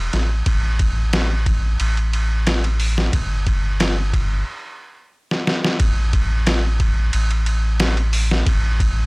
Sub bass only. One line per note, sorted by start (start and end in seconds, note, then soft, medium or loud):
0.00 0.10 E1 medium
0.13 0.43 A1 medium
0.47 1.77 A1 loud
1.80 3.10 A1 loud
3.13 4.44 G1 medium
5.80 7.10 A1 loud
7.14 8.44 A1 loud
8.47 9.06 A1 loud